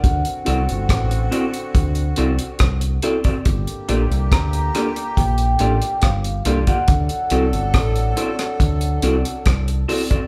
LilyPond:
<<
  \new Staff \with { instrumentName = "Vibraphone" } { \time 4/4 \key d \minor \tempo 4 = 70 ges''4. r2 r8 | r4 bes''4 g''4 f''8. ges''16~ | ges''2. r4 | }
  \new Staff \with { instrumentName = "Clean electric guitar" } { \time 4/4 \key d \minor r8 <c' fis' a' d''>16 r8. <c' fis' a' d''>16 r8. <c' fis' a' d''>16 r8. <c' fis' a' d''>16 <c' fis' a' d''>16 | r8 <bes f' g' d''>16 r8. <bes f' g' d''>16 r8. <bes f' g' d''>16 r8. <bes f' g' d''>16 <bes f' g' d''>16 | r8 <c' fis' a' d''>16 r8. <c' fis' a' d''>16 r8. <c' fis' a' d''>16 r8. <c' fis' a' d''>16 <c' fis' a' d''>16 | }
  \new Staff \with { instrumentName = "Tine electric piano" } { \time 4/4 \key d \minor r8 <c' e' fis' a'>8 r8 <c' e' fis' a'>8 r8 <c' e' fis' a'>8 r8 <c' e' fis' a'>8 | r8 <bes d' f' a'>8 r8 <bes d' f' a'>8 r8 <bes d' f' a'>8 r8 <bes d' f' a'>8 | r8 <c' e' fis' a'>8 r8 <c' e' fis' a'>8 r8 <c' e' fis' a'>8 r8 <c' e' fis' a'>8 | }
  \new Staff \with { instrumentName = "Horn section" } { \time 4/4 \key d \minor <d c' fis'>2.~ <d c' fis'>8 r8 | <d bes g'>2.~ <d bes g'>8 r8 | <fis d' a'>2.~ <fis d' a'>8 r8 | }
  \new Staff \with { instrumentName = "Fingered electric bass" } { \clef bass \time 4/4 \key d \minor d,16 r16 c,16 g,,16 a,,8 r8 d,8 c,16 r16 c,8 r8 | g,,16 r16 bes,,16 c,16 d,8 r8 bes,,8 a,,16 r16 g,,8 c,16 r16 | d,16 r16 c,16 g,,16 a,,8 r8 d,8 c,16 r16 c,8 r8 | }
  \new DrumStaff \with { instrumentName = "Drums" } \drummode { \time 4/4 <hh bd>16 hh16 hh16 hh16 <hh bd ss>16 hh16 hh16 hh16 <hh bd>16 hh16 hh16 hh16 <hh bd ss>16 hh16 hh16 <hh bd>16 | <hh bd>16 hh16 hh16 hh16 <hh bd ss>16 hh16 <hh ss>16 hh16 <hh bd>16 hh16 hh16 hh16 <hh bd ss>16 hh16 hh16 <hh bd>16 | <hh bd>16 hh16 hh16 hh16 <hh bd ss>16 hh16 hh16 <hh ss>16 <hh bd>16 hh16 hh16 hh16 <hh bd ss>16 hh16 hho16 <hh bd>16 | }
>>